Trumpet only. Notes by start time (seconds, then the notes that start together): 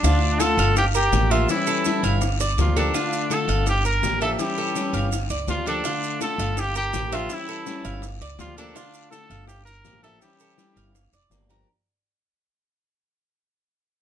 Already playing: D4
0.40 A4
0.78 G4
0.96 G4
1.31 F4
1.50 E4
2.61 F4
2.79 D4
3.33 A4
3.69 G4
3.86 A#4
4.22 A4
4.40 G4
5.49 F4
5.68 D4
6.22 A4
6.59 G4
6.77 G4
7.14 F4
7.33 E4
8.40 F4
8.58 D4
9.11 A4
9.48 G4
9.65 A#4
10.03 A4
10.22 G4